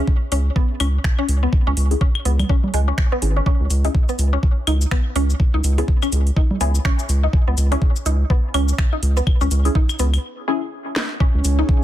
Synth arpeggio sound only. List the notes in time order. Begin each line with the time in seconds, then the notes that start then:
0.32 C#4
0.56 B3
0.80 C#4
1.19 C#4
1.43 B3
1.67 C#4
2.01 C#4
2.25 B3
2.50 C#4
2.74 G#3
2.88 C#4
3.12 B3
3.36 C#4
3.46 C#4
3.85 D#4
4.09 B3
4.33 C#4
4.67 D#4
4.91 B3
5.16 C#4
5.54 D#4
5.78 B3
6.02 C#4
6.37 D#4
6.61 B3
6.85 C#4
7.23 D#4
7.48 B3
7.72 C#4
8.06 D#4
8.30 B3
8.54 C#4
8.93 D#4
9.17 B3
9.41 C#4
9.75 D#4
9.99 B3
11.20 C#4
11.59 D#4